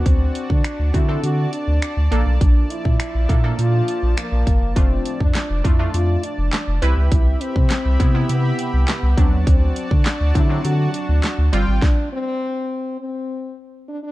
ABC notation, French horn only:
X:1
M:4/4
L:1/16
Q:1/4=102
K:Ddor
V:1 name="French horn"
C3 D3 E2 ^F2 D4 z2 | D2 E6 F4 _B,4 | C3 D3 E2 F2 D4 z2 | E2 C6 B,4 B,4 |
C3 D3 E2 ^F2 D4 z2 | D2 C6 C4 z2 D D |]